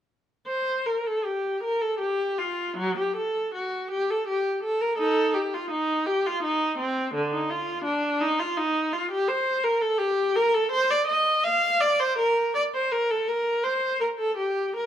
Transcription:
0.47 0.83 C5 medium
0.86 1.05 A#4 medium
1.06 1.25 A4 medium
1.25 1.63 G4 medium
1.64 1.81 A#4 medium
1.81 2.00 A4 medium
1.99 2.37 G4 medium
2.38 2.78 F4 medium
2.78 2.97 F#3 medium
2.98 3.17 G4 medium
3.17 3.53 A4 medium
3.55 3.90 F#4 medium
3.91 4.09 G4 medium
4.10 4.28 A4 medium
4.28 4.63 G4 medium
4.64 4.81 A4 medium
4.81 4.99 A#4 medium
4.98 5.31 D#4 medium
4.98 5.33 A4 medium
5.34 5.52 G4 medium
5.54 5.71 F4 medium
5.71 6.06 D#4 medium
6.06 6.24 G4 medium
6.26 6.43 F4 medium
6.43 6.78 D#4 medium
6.78 7.14 C4 medium
7.14 7.32 D3 medium
7.32 7.50 D#4 medium
7.50 7.85 F4 medium
7.85 8.20 D4 medium
8.20 8.39 D#4 medium
8.39 8.57 F4 medium
8.56 8.93 D#4 medium
8.92 9.11 F4 medium
9.11 9.29 G4 medium
9.28 9.64 C5 medium
9.63 9.82 A#4 medium
9.81 10.00 A4 medium
9.98 10.35 G4 medium
10.35 10.54 A#4 loud
10.54 10.72 A4 medium
10.71 10.89 C5 loud
10.90 11.08 D5 loud
11.07 11.43 D#5 medium
11.44 11.81 F5 loud
11.80 11.99 D5 medium
12.00 12.18 C5 medium
12.18 12.54 A#4 medium
12.55 12.62 D5 medium
12.74 12.91 C5 medium
12.92 13.09 A#4 medium
13.10 13.28 A4 medium
13.28 13.63 A#4 medium
13.64 14.00 C5 medium
14.00 14.08 A#4 medium
14.19 14.37 A4 medium
14.37 14.74 G4 medium
14.76 14.86 A#4 medium

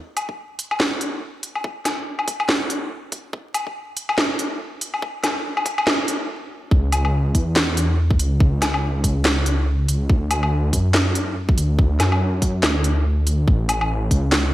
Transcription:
0.17 closed hi-hat medium
0.17 low woodblock medium
0.29 kick medium
0.59 closed hi-hat medium
0.71 low woodblock medium
0.80 snare loud
1.01 closed hi-hat medium
1.43 closed hi-hat medium
1.55 low woodblock medium
1.64 kick loud
1.85 snare medium
1.85 closed hi-hat medium
1.85 low woodblock medium
2.19 low woodblock medium
2.28 kick loud
2.28 closed hi-hat medium
2.40 low woodblock medium
2.49 snare loud
2.70 closed hi-hat medium
3.12 kick medium
3.12 closed hi-hat medium
3.33 kick loud
3.54 closed hi-hat medium
3.54 low woodblock medium
3.67 kick medium
3.97 closed hi-hat medium
4.09 low woodblock medium
4.18 snare loud
4.39 closed hi-hat medium
4.81 closed hi-hat medium
4.94 low woodblock medium
5.02 kick loud
5.24 snare medium
5.24 closed hi-hat medium
5.24 low woodblock medium
5.57 low woodblock medium
5.66 kick loud
5.66 closed hi-hat medium
5.78 low woodblock medium
5.87 snare loud
6.08 closed hi-hat medium
6.71 7.33 C#2 loud
6.71 kick loud
6.92 closed hi-hat medium
6.92 low woodblock medium
7.05 low woodblock medium
7.35 8.18 E2 loud
7.35 kick medium
7.35 closed hi-hat medium
7.56 snare loud
7.56 clap medium
7.77 closed hi-hat medium
8.10 kick loud
8.19 8.60 C#2 loud
8.19 closed hi-hat medium
8.40 kick loud
8.62 9.45 C#2 medium
8.62 snare medium
8.62 closed hi-hat medium
8.62 low woodblock medium
8.74 low woodblock medium
9.04 kick medium
9.04 closed hi-hat medium
9.25 snare loud
9.25 clap medium
9.46 9.87 C#2 loud
9.46 closed hi-hat medium
9.88 10.08 C#2 loud
9.88 closed hi-hat medium
10.09 10.71 D2 loud
10.09 kick loud
10.31 closed hi-hat medium
10.31 low woodblock medium
10.43 low woodblock medium
10.73 11.56 F#2 medium
10.73 kick medium
10.73 closed hi-hat medium
10.94 snare loud
10.94 clap medium
11.15 closed hi-hat medium
11.49 kick loud
11.57 11.98 D2 loud
11.57 closed hi-hat medium
11.79 kick loud
12.00 12.62 F#2 medium
12.00 snare medium
12.00 closed hi-hat medium
12.00 low woodblock medium
12.12 low woodblock medium
12.42 kick medium
12.42 closed hi-hat medium
12.63 13.04 D2 loud
12.63 snare loud
12.63 clap medium
12.84 closed hi-hat medium
13.05 13.46 D2 medium
13.27 closed hi-hat medium
13.48 14.10 A1 loud
13.48 kick loud
13.69 closed hi-hat medium
13.69 low woodblock medium
13.81 low woodblock medium
14.11 14.54 C#2 loud
14.11 kick medium
14.11 closed hi-hat medium
14.32 snare loud
14.32 clap medium

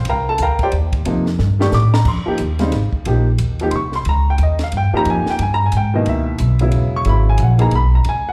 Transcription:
0.05 0.38 C2 medium
0.05 ride medium
0.09 0.28 A#4 medium
0.09 0.28 F5 medium
0.09 0.28 G5 medium
0.09 0.28 A#5 medium
0.29 0.40 A4 medium
0.29 0.40 A5 loud
0.38 0.71 D2 medium
0.38 hi-hat pedal medium
0.38 ride medium
0.42 0.61 A#4 medium
0.42 0.61 F5 medium
0.42 0.61 G5 medium
0.42 0.61 A#5 loud
0.59 kick medium
0.59 ride medium
0.63 0.70 G4 medium
0.63 0.70 C5 medium
0.63 0.70 D5 medium
0.63 0.70 G5 medium
0.72 1.05 D#2 loud
0.72 ride medium
0.93 kick medium
0.93 ride medium
1.05 1.38 F2 medium
1.05 1.24 C3 medium
1.05 1.25 F3 medium
1.05 1.25 A#3 medium
1.05 1.25 D#4 medium
1.05 ride medium
1.26 snare medium
1.39 1.71 G2 loud
1.39 snare soft
1.59 1.71 D#3 medium
1.59 1.71 A3 medium
1.59 1.71 D4 medium
1.59 1.72 G4 medium
1.59 1.73 C#6 medium
1.59 snare medium
1.72 2.04 A2 medium
1.72 1.94 D6 loud
1.72 snare medium
1.72 hi-hat pedal medium
1.94 2.06 A#5 medium
1.94 snare loud
2.05 2.25 F2 medium
2.05 2.70 C6 medium
2.05 kick medium
2.05 crash medium
2.26 2.38 F3 medium
2.26 2.38 A#3 medium
2.26 2.38 D#4 medium
2.26 2.39 G4 medium
2.26 muted upright bass stroke soft
2.38 2.72 D#2 loud
2.38 hi-hat pedal medium
2.38 ride medium
2.59 2.71 C#3 medium
2.59 2.71 G3 medium
2.59 2.72 C4 medium
2.59 2.72 D#4 medium
2.59 snare soft
2.59 ride soft
2.72 2.92 G#1 medium
2.72 snare soft
2.72 ride medium
2.93 muted upright bass stroke soft
2.93 kick medium
3.05 3.38 A#1 medium
3.05 3.25 F3 medium
3.05 3.25 A#3 medium
3.05 3.25 D#4 medium
3.05 3.26 G4 medium
3.05 ride medium
3.38 3.71 D#2 medium
3.38 hi-hat pedal medium
3.38 ride medium
3.59 3.72 F3 medium
3.59 3.72 A#3 medium
3.59 3.72 D#4 medium
3.59 3.73 G4 medium
3.59 ride soft
3.71 4.05 C2 medium
3.71 3.73 C6 medium
3.71 ride medium
3.76 3.94 C#6 medium
3.92 4.07 C6 medium
3.92 snare soft
4.05 4.38 C#2 medium
4.05 ride medium
4.09 4.28 A#5 loud
4.30 4.41 G5 medium
4.38 4.71 D#2 medium
4.38 hi-hat pedal soft
4.38 ride medium
4.43 4.61 D#5 medium
4.59 snare medium
4.59 ride soft
4.64 4.74 F5 medium
4.72 4.91 G2 medium
4.72 ride medium
4.77 4.95 G5 medium
4.93 5.37 F3 medium
4.93 5.37 A#3 medium
4.93 5.37 D#4 medium
4.93 5.38 G4 medium
4.93 5.07 A#5 loud
4.93 muted upright bass stroke soft
5.05 5.25 F2 loud
5.05 ride medium
5.10 5.28 G#5 medium
5.26 muted upright bass stroke soft
5.26 snare medium
5.30 5.41 G5 medium
5.39 5.72 G2 medium
5.39 5.52 G#5 medium
5.39 ride medium
5.54 5.63 A#5 loud
5.66 5.75 G#5 medium
5.72 6.05 G#2 medium
5.72 hi-hat pedal medium
5.72 ride medium
5.77 5.95 G5 medium
5.94 6.37 B2 medium
5.94 6.38 D#3 medium
5.94 6.38 E3 medium
5.94 6.38 A#3 medium
5.94 6.07 D#5 medium
6.06 6.39 C#2 medium
6.06 6.58 E5 medium
6.06 ride medium
6.38 6.72 B1 loud
6.38 hi-hat pedal medium
6.38 ride medium
6.59 7.04 C#3 medium
6.59 7.04 F#3 medium
6.59 7.04 B3 medium
6.59 7.05 E4 medium
6.59 ride medium
6.72 7.05 E1 medium
6.72 ride medium
6.96 7.07 C#6 loud
7.05 7.38 G#1 medium
7.05 7.56 C#3 medium
7.05 7.56 F#3 medium
7.05 7.57 B3 medium
7.05 7.57 E4 medium
7.05 ride medium
7.09 7.28 B5 loud
7.30 7.41 G#5 medium
7.38 7.72 A#1 loud
7.38 hi-hat pedal medium
7.38 ride medium
7.43 7.61 F#5 medium
7.58 7.71 E3 medium
7.58 7.71 A#3 medium
7.58 7.71 D#4 medium
7.58 7.72 G#4 medium
7.58 7.73 A#5 medium
7.58 ride medium
7.71 8.05 B1 medium
7.71 ride medium
7.75 7.94 B5 loud
7.95 8.07 A#5 medium
8.04 8.33 C#2 medium
8.04 ride medium
8.09 8.28 G#5 medium
8.29 8.33 F#5 medium

